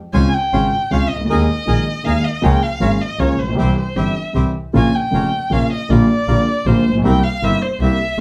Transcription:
0.13 C#2 C#3 G#3 C4 C#4 F4 C5 G#5
0.34 G5
0.52 G#1 G#2 C#3 G#3 C4 C#4 F4 C5
0.90 C#2 C#3 G#3 C4 C#4 F4 C5 F5
1.09 C#2 D#5
1.16 C2
1.21 C#2
1.25 D2 D#5
1.29 D#2 D#3 G#3 A#3 D#4 G#4 A#4
1.66 A#1 A#2 D#3 G#3 A#3 D#4 G#4 A#4
2.04 D#2 D#3 G#3 A#3 D#4 G#4 A#4 F5
2.24 D#5
2.42 C#2 C#3 F3 A#3 C#4 F4 G#4 A#4 G5
2.63 F5
2.80 G#1 G#2 F3 A#3 C#4 F4 G#4 A#4
3.01 D#5
3.19 C#2 C#3 F3 A#3 C#4 F4 G#4 A#4 C#5
3.39 A#1 C5
3.44 A1 A#1
3.52 B1 C2 C3 E3 G3 C4 G4
3.58 C2 C4 E4 G4 C5
3.77 C5
3.95 G1 G2 E3 G3 C4 E4 G4 E5
4.33 C2 C3 E3 G3 C4 E4 G4
4.73 A#1 A#2 C#3 F3 A#3 C#4 F4 G#5
4.95 G5
5.11 F1 F2 C#3 F3 A#3 C#4 F4
5.50 A#1 A#2 C#3 F3 A#3 C#4 F4 F5
5.72 D#5
5.89 A#1 A#2 D3 G3 A#3 F4 D5
6.27 A#1 A#2 D3 G3 A#3 F4
6.65 A#1 A#2 D3 G3 A#3 F4 C5
6.85 A1 A#1
6.95 A#1 B1
7.04 C2 C3 G3 A#3 C4 E4 G5
7.23 F5
7.42 G1 G2 C3 G3 A#3 C4 E4 E5
7.63 C5
7.80 C2 C3 G3 A#3 C4 E4 E5

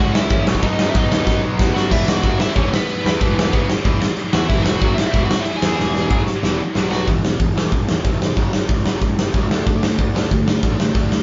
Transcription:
Already playing: F#4 F#5
0.00 C#2 C#3 G#3 C#4
0.15 C#2 E4 E5, snare
0.30 A1 C#3 G#3 C#4, kick, ride
0.46 B1 B2 F#3 B3, snare
0.55 kick
0.62 B1 B2 F#3 B3 D#4 D#5, kick, ride
0.79 F#2, snare
0.89 E4 E5
0.95 B1 B2 F#3 B3 D#4 D#5, kick, ride
1.11 D#2 B2 F#3 B3, snare
1.27 F#2 B2 F#3 B3, kick, snare
1.45 B1
1.59 E2 B2 F#3 B3, kick, snare
1.75 F#2 B2 F#3 B3 F#4 F#5, snare
1.91 E1 E2 B2 E3 E4 E5, kick, crash
2.08 F#4 F#5, snare
2.23 F#1 F#2 C#3 F#3, kick, crash
2.39 E4 E5, muted distorted electric guitar stroke, muted picked electric bass stroke, muted overdriven electric guitar stroke, snare
2.56 E1 E2 B2 E3 C#4 C#5, kick, crash
2.74 B3 B4, snare
2.89 B3 B4, crash
3.04 E2 E3 B3 E4 B4, snare
3.20 E1 E2 B2 E3, kick, crash
3.39 snare
3.53 F#1 F#2 C#3 F#3, kick, crash
3.68 muted distorted electric guitar stroke, muted overdriven electric guitar stroke, muted picked electric bass stroke, snare
3.84 E1 E2 B2 E3, kick, crash
4.02 snare
4.17 crash
4.33 E2 E3 B3 E4 F#4 F#5, snare
4.48 E1 E2 B2 E3 E4 E5, kick, crash
4.62 F#4 F#5, snare
4.81 F#1 F#2 C#3 F#3, kick, crash
4.94 E5
4.98 E4, muted distorted electric guitar stroke, muted overdriven electric guitar stroke, muted picked electric bass stroke, snare
5.07 E5
5.12 E1 E2 B2 E4, kick, crash
5.16 E3
5.25 F#5
5.29 F#4, snare
5.40 E5
5.45 E4, crash
5.56 G#5
5.61 E2 E3 B3 E4 G#4, snare
5.78 E1 E2 B2 E3, snare
5.95 snare
6.10 F#1 F#2 C#3 F#3, kick
6.27 muted overdriven electric guitar stroke, muted distorted electric guitar stroke, muted picked electric bass stroke, snare
6.43 E1 E2 B2 E3, snare
6.75 B1 B2 F#3 B3, snare
6.91 F#4 F#5, snare
7.07 E1 E2 B2 E3, kick, open hi-hat
7.24 E1 E2 B2, snare
7.40 E1 E2 B2, kick, open hi-hat
7.55 E2 B2 E3, snare
7.72 E1 E2 B2, kick, open hi-hat
7.87 E1 E2 B2, snare
8.03 F1 E2 B2 E3, kick, open hi-hat
8.21 E2 B2, snare
8.36 F#1 F#2 C#3 F#3, kick, open hi-hat
8.53 F#1 F#2 C#3, snare
8.69 C#2 F#2 C#3, kick, open hi-hat
8.86 F#1 F#2 C#3 F#3, snare
9.01 C#2 F#2 C#3, kick, open hi-hat
9.19 F#1 F#2 C#3, snare
9.34 C#2 F#2 C#3 F#3, kick, open hi-hat
9.50 D2 D3 A3 D4, snare
9.66 D2 D3 A3 D4, kick, open hi-hat
9.83 D2 D3 A3, snare
9.98 D2 D3 A3, kick, open hi-hat
10.14 D3 A3 D4, snare
10.30 D2 D3 A3, kick, open hi-hat
10.46 D2 D3 A3, snare
10.63 A1 D3 A3 D4, kick, open hi-hat
10.79 D3 A3, snare
10.94 D2 D3 A3 D4, kick, open hi-hat
11.11 D2 D3 A3, snare

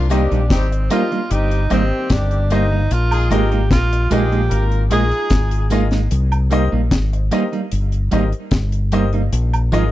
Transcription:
Already playing: C2
0.10 D#3 G3 A#3 C4 D4 D#4 G4 A#4 C5 D#5, closed hi-hat, tambourine
0.31 A#1 G3 A#3 D#4, closed hi-hat
0.49 G#1 G3 C4 D#4 G4, kick, snare, closed hi-hat
0.72 C5 D#5, closed hi-hat
0.90 F3 G3 A#3 D4 D#4 F4 G4 A#4 C5 D#5, closed hi-hat, tambourine
1.11 G3 A#3 D#4, closed hi-hat
1.30 G1 G3 C4 D#4 G4, closed hi-hat
1.51 closed hi-hat
1.70 G#1 D#3 G3 A#3 C4 D#4 G4 A#4 C5 D#5, closed hi-hat, tambourine
2.10 G1 D4, kick, snare, closed hi-hat
2.31 closed hi-hat
2.50 G3 A#3 D#4 G4 A#4 C5 D#5, closed hi-hat, tambourine
2.72 G3 A#3 D#4 C5
2.91 A#1 F4, closed hi-hat
3.11 G#3 D#4 F4 G#4, closed hi-hat, high woodblock
3.30 G#1 G#3 A#3 D#4 F4 G4 G#4 A#4 D#5, closed hi-hat, tambourine
3.52 G#3 A#3 D#4, closed hi-hat
3.71 A#1 A#3 D#4 F4 A#4, kick, snare, closed hi-hat
3.92 A#4 D#5, closed hi-hat
4.10 A#1 G#3 A#3 D#4 F4 G4 G#4 A#4 D#5, closed hi-hat, tambourine
4.32 G#3 A#3 D#4, closed hi-hat
4.50 G#1 A#3 D#4 F4 A#4, closed hi-hat
4.72 closed hi-hat
4.90 A#1 G#3 A#3 D#4 F4 G#4 A#4 D#5, closed hi-hat, tambourine
5.11 closed hi-hat
5.30 G#1, kick, snare, closed hi-hat
5.51 closed hi-hat
5.70 G#3 A#3 D#4 F4 G#4 A#4 D#5, closed hi-hat, tambourine
5.91 G#3 A#3 D#4, snare, closed hi-hat
6.11 C2, closed hi-hat
6.32 closed hi-hat, high woodblock
6.50 G3 A#3 D#4 G4 A#4 C5 D#5, closed hi-hat, tambourine
6.72 A#1 G3 A#3 D#4
6.91 G#1, kick, snare, closed hi-hat
7.13 C5 D#5, closed hi-hat
7.31 G3 A#3 D#4 G4 A#4 C5 D#5, closed hi-hat, tambourine
7.52 G3 A#3 D#4, closed hi-hat
7.72 G1, closed hi-hat
7.92 closed hi-hat
8.11 G#1 G3 A#3 D#4 G4 A#4 C5 D#5, closed hi-hat, tambourine
8.32 closed hi-hat
8.51 G1, kick, snare, closed hi-hat
8.72 closed hi-hat
8.92 G3 A#3 D#4 G4 A#4 C5 D#5, closed hi-hat, tambourine
9.13 G3 A#3 D#4, closed hi-hat
9.33 A#1, closed hi-hat
9.53 closed hi-hat, high woodblock
9.72 G#1 F3 G#3 D#4 F4 G#4 A#4 D#5, closed hi-hat, tambourine

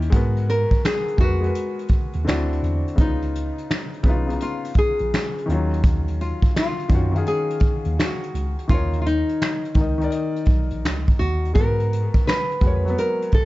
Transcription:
Already playing: D#3 C#4 E4 G4
0.02 closed hi-hat
0.10 G#2 G#3 F#4 A#4, kick, closed hi-hat
0.16 B3
0.36 closed hi-hat
0.49 A#4, closed hi-hat
0.71 kick, closed hi-hat
0.85 G#4, finger snap, snare
1.08 closed hi-hat
1.17 F2 G#3 F#4, kick, closed hi-hat
1.21 A#4 B4
1.40 G#3 F#4, closed hi-hat
1.45 A#4 B4
1.55 closed hi-hat
1.79 closed hi-hat
1.88 kick, closed hi-hat
2.13 D#2, closed hi-hat
2.24 D2 D3 C4 D4, snare
2.29 E4 F#4, finger snap
2.52 closed hi-hat
2.63 E2, closed hi-hat
2.88 closed hi-hat
2.96 C#2 C#3 B3, kick, closed hi-hat
3.00 D#4 F4
3.22 closed hi-hat
3.35 closed hi-hat
3.58 closed hi-hat
3.71 finger snap, snare
3.94 closed hi-hat
4.03 B1 C#3 B3, kick, closed hi-hat
4.07 D#4 F4
4.27 C#3 B3 D#4, closed hi-hat
4.33 F4
4.40 F4, closed hi-hat
4.65 closed hi-hat
4.74 kick, closed hi-hat
4.78 G#4
4.99 A#1, closed hi-hat
5.14 finger snap, snare
5.38 closed hi-hat
5.46 D#2 D#3 C#4, closed hi-hat
5.50 F#3 F4
5.73 closed hi-hat
5.84 kick, closed hi-hat
6.08 closed hi-hat
6.21 F4, closed hi-hat
6.42 kick, closed hi-hat
6.56 F4, finger snap, snare
6.79 closed hi-hat
6.88 F#2 D#3 C#4, kick, closed hi-hat
6.93 F4 F#4
7.12 D#3 C#4, closed hi-hat
7.16 G#4 F5
7.26 G#4, closed hi-hat
7.50 closed hi-hat
7.60 kick, closed hi-hat
7.85 D#2, closed hi-hat
7.99 F#4, finger snap, snare
8.23 closed hi-hat
8.34 C#2, closed hi-hat
8.59 closed hi-hat
8.68 D#2 D#3 C#4 F4, kick, closed hi-hat
8.72 A#4 C#5
8.76 D#4
8.93 closed hi-hat
9.02 F4
9.06 D#4, closed hi-hat
9.29 closed hi-hat
9.42 finger snap, snare
9.65 closed hi-hat
9.74 C#2 D#3 D#4, kick, closed hi-hat
9.79 A#4 D#5
9.98 D#3 D#4, closed hi-hat
10.02 A#4 D5
10.10 D#5, closed hi-hat
10.36 closed hi-hat
10.45 B1, kick, closed hi-hat
10.70 A#1, closed hi-hat
10.85 C#2, finger snap, snare
11.08 kick, closed hi-hat
11.19 D#2 F#4, closed hi-hat
11.45 closed hi-hat
11.54 G#2 G#3 F#4 A#4, kick, closed hi-hat
11.60 B3
11.80 closed hi-hat
11.93 closed hi-hat
12.14 kick, closed hi-hat
12.27 B4, finger snap, snare
12.51 closed hi-hat
12.61 F2 G#3 F#4, kick, closed hi-hat
12.65 A#4 C#5
12.84 F#3 F#4, closed hi-hat
12.90 B3
12.98 A#4, closed hi-hat
13.22 closed hi-hat
13.32 A4, kick, closed hi-hat

